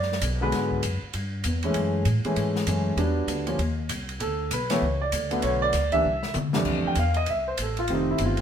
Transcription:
Already playing: upright bass F#2, grand piano D5
0.02 snare
0.12 snare
0.21 upright bass B1, hi-hat pedal, ride
0.41 grand piano D3 F#3 G#3 B3 B4
0.52 upright bass G#2, snare, ride
0.71 kick
0.83 upright bass F#2, hi-hat pedal, ride
1.03 muted upright bass stroke
1.13 upright bass G2, ride
1.44 upright bass E2, hi-hat pedal, ride
1.63 grand piano E3 G#3 A3 C#4, ride
1.74 upright bass F#2, ride
2.05 upright bass A2, hi-hat pedal, ride
2.25 grand piano E3 G#3 A3 C#4, muted upright bass stroke, ride
2.36 upright bass G#2, ride
2.56 snare
2.67 upright bass F#2, grand piano E3 G#3 A3 C#4, hi-hat pedal, ride
2.97 upright bass E2, grand piano F#3 G3 B3 D4, ride
3.27 upright bass D2, hi-hat pedal, ride
3.47 grand piano F3 G3 A#3 C#4, ride
3.59 upright bass D#2, ride
3.89 upright bass C2, hi-hat pedal, ride
4.09 ride
4.20 upright bass D2, grand piano A4, ride
4.51 upright bass B1, grand piano B4, hi-hat pedal, ride
4.70 grand piano E3 F#3 A3 B3 C#5, snare, ride
4.82 upright bass C#2
5.01 grand piano D5
5.12 upright bass D2, hi-hat pedal, ride
5.31 grand piano D3 F#3 A3 B3, ride
5.42 upright bass B1, grand piano C#5, ride
5.62 grand piano D5
5.73 upright bass D2, snare, hi-hat pedal, ride
5.92 grand piano E3 G3 A#3 D4 E5, kick, ride
6.05 upright bass C2
6.23 snare
6.34 upright bass C3, hi-hat pedal, mid tom
6.53 grand piano F2 E3 G3 A3 D4, snare
6.65 upright bass F2, kick, crash
6.85 grand piano G5, muted upright bass stroke
6.95 upright bass E2, grand piano F5, hi-hat pedal, ride
7.14 grand piano D#5, ride
7.26 upright bass C2, grand piano E5, ride
7.48 grand piano C5
7.57 upright bass A1, hi-hat pedal, ride
7.62 grand piano A4
7.77 grand piano F4, ride
7.88 upright bass F1, grand piano D#3 G3 A3 C4, ride
7.94 grand piano D#4
8.11 grand piano E4
8.18 upright bass G1, hi-hat pedal, ride
8.25 grand piano F4
8.37 ride

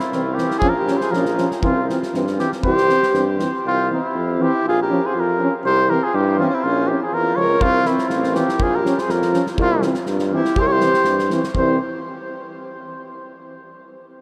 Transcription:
Already playing: alto saxophone C4, cornet E4
0.12 tuba C2, euphonium E3, french horn C4, snare
0.34 euphonium E3, alto saxophone E4, cornet G4
0.38 french horn C4, snare
0.51 snare
0.58 euphonium F3, french horn C#4, alto saxophone F4, cornet G#4, kick
0.63 tuba A#1
0.69 cornet A#4
0.79 alto saxophone G4
0.85 euphonium F3, french horn C#4, snare
0.97 cornet C5, snare
1.02 alto saxophone G#4
1.10 euphonium F3, cornet A#4, snare
1.14 tuba A#1, french horn C#4, alto saxophone F4
1.25 snare
1.37 euphonium F3, french horn C#4, snare
1.51 snare
1.62 tuba C2, euphonium E3, alto saxophone C4, french horn C4, cornet F4, kick
1.88 euphonium E3, french horn C4, snare
2.03 snare
2.13 tuba G2, euphonium E3, french horn C4, snare
2.27 snare
2.37 euphonium E3, french horn C4, alto saxophone E4, cornet G4, snare
2.52 snare
2.61 tuba C2, euphonium E3, french horn C4, alto saxophone G4, cornet C5, kick
2.78 snare
2.86 euphonium E3, french horn C4, snare
3.03 snare
3.13 tuba G2, euphonium E3, french horn C4, snare
3.39 euphonium E3, french horn C4, snare
3.65 tuba C2, alto saxophone C4, cornet F4
3.89 euphonium E3, french horn C4, alto saxophone C4
3.94 cornet E4
4.15 tuba F2
4.38 euphonium E3, french horn C4, cornet G4
4.42 alto saxophone E4
4.65 tuba A#1, alto saxophone F4, cornet G#4
4.82 alto saxophone G4, cornet A#4
4.90 euphonium F3, french horn C#4
5.06 alto saxophone G#4, cornet C5
5.14 tuba F2, alto saxophone F4
5.20 cornet A#4
5.38 euphonium F3, french horn C#4
5.64 tuba C2, alto saxophone G4, cornet C5
5.88 euphonium E3, french horn C4, alto saxophone G4, cornet A#4
6.03 alto saxophone F4, cornet G#4
6.14 tuba G2, alto saxophone E4, cornet G4
6.38 euphonium E3, french horn C4, alto saxophone C#4, cornet F4
6.43 alto saxophone E4, cornet F4 G4
6.50 alto saxophone C#4
6.54 alto saxophone C4, cornet E4
6.63 tuba A#1, alto saxophone C#4, cornet F4
6.86 euphonium F3, french horn C#4, cornet G4
6.90 alto saxophone E4
7.02 alto saxophone F4, cornet G#4
7.13 tuba E2, cornet A#4
7.17 alto saxophone F4
7.35 tuba C#2, euphonium F3, cornet C#5
7.39 french horn C#4, alto saxophone A#4
7.60 tuba C2, alto saxophone C4, cornet F4, kick
7.85 euphonium E3, french horn C4, alto saxophone C4, cornet E4, snare
7.99 snare
8.08 tuba A1, alto saxophone C4, cornet F4, snare
8.24 snare
8.33 euphonium E3, cornet G4, snare
8.37 french horn C4, alto saxophone E4
8.49 snare
8.59 tuba A#1, cornet G#4, kick
8.63 alto saxophone F4
8.75 alto saxophone G4, cornet A#4
8.83 euphonium F3, french horn C#4, snare
8.98 alto saxophone G#4, cornet C5, snare
9.08 tuba F2, cornet A#4, snare
9.13 alto saxophone F4
9.22 snare
9.32 euphonium F3, french horn C#4, snare
9.47 snare
9.58 tuba C2, alto saxophone C4, cornet F4, kick
9.80 euphonium E3, french horn C4, snare
9.94 snare
10.06 tuba G2, snare
10.19 snare
10.31 euphonium E3, french horn C4, alto saxophone E4, cornet G4
10.45 snare
10.56 tuba C2, alto saxophone G4, cornet C5, kick
10.62 alto saxophone A#4
10.67 alto saxophone G4, cornet C#5
10.72 cornet C5
10.80 euphonium E3, french horn C4, snare
10.94 snare
11.04 tuba G2, snare
11.19 snare
11.30 euphonium E3, french horn C4, snare
11.44 snare
11.55 tuba C2, euphonium E3, alto saxophone G3, french horn C4, cornet C5, kick

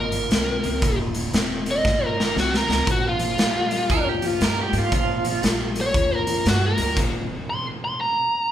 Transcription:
Already playing: upright bass G#1
0.00 lead electric guitar A#4
0.12 clean electric guitar D#2 A#2, closed hi-hat
0.31 upright bass C2, clean electric guitar D#2 C3, snare, closed hi-hat
0.64 upright bass C#2, clean electric guitar D#2 C3, closed hi-hat
0.82 upright bass D#1, clean electric guitar D#2 A#2, kick, closed hi-hat
1.14 clean electric guitar D#2 A#2, closed hi-hat
1.33 upright bass D#1, clean electric guitar D#2 C3, snare, closed hi-hat
1.66 clean electric guitar D#2 C3, closed hi-hat
1.71 lead electric guitar D#5
1.84 upright bass G#1, clean electric guitar D#2 A#2, kick, snare
2.05 lead electric guitar A#4
2.17 clean electric guitar D#2 A#2, snare
2.36 upright bass C2, clean electric guitar D#2 C3, snare
2.40 lead electric guitar F#4
2.54 lead electric guitar A#4, snare
2.67 upright bass C#2, clean electric guitar D#2 C3, snare
2.87 upright bass A#1, clean electric guitar A#2 F3, kick, closed hi-hat
2.91 lead electric guitar F#4
3.09 lead electric guitar F4
3.19 clean electric guitar A#2 F3, closed hi-hat
3.38 upright bass A#1, clean electric guitar A#2 G3, snare, closed hi-hat
3.71 clean electric guitar A#2 G3, closed hi-hat
3.90 upright bass D#2, clean electric guitar A#2 F3 A#4, kick, closed hi-hat
4.09 clean electric guitar G4
4.22 clean electric guitar A#2 F3, closed hi-hat
4.27 clean electric guitar F4
4.40 upright bass G2, clean electric guitar A#2 G3 A#4, snare, closed hi-hat
4.61 clean electric guitar G4
4.72 upright bass G#2, clean electric guitar A#2 G3, closed hi-hat
4.78 clean electric guitar F4
4.92 upright bass A#1, clean electric guitar A#2 F3 F4, kick, closed hi-hat
5.24 clean electric guitar A#2 F3, closed hi-hat
5.42 upright bass A#1, clean electric guitar A#2 G3, snare, closed hi-hat
5.75 clean electric guitar A#2 G3, closed hi-hat
5.81 lead electric guitar C#5
5.94 upright bass D#2, clean electric guitar A#2 F3, kick, closed hi-hat
6.15 lead electric guitar A#4
6.27 clean electric guitar A#2 F3, closed hi-hat
6.46 upright bass G2, clean electric guitar A#2 G3, lead electric guitar F#4, snare, closed hi-hat
6.66 lead electric guitar A#4
6.77 upright bass D2, clean electric guitar A#2 G3, closed hi-hat
6.96 upright bass D#1, clean electric guitar D#2 A#2, kick, closed hi-hat, crash
7.50 lead electric guitar C6
7.85 lead electric guitar C6
8.01 lead electric guitar A#5

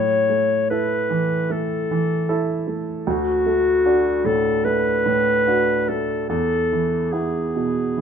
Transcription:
Already playing: grand piano A2, clarinet C#5
0.29 grand piano A3
0.70 grand piano E4 A4, clarinet B4
1.10 grand piano E3
1.50 grand piano A3, clarinet A4
1.91 grand piano E3
2.29 grand piano E4 A4
2.67 grand piano A3
3.07 grand piano D2, clarinet F#4
3.46 grand piano A3
3.85 grand piano D4 F#4
4.25 grand piano A2, clarinet A4
4.65 grand piano A3, clarinet B4
5.06 grand piano A2
5.47 grand piano D4 F#4
5.89 grand piano A3, clarinet A4
6.29 grand piano E2, clarinet A4
6.72 grand piano E3
7.12 grand piano B3 E4, clarinet G#4
7.56 grand piano B2
7.97 grand piano E3

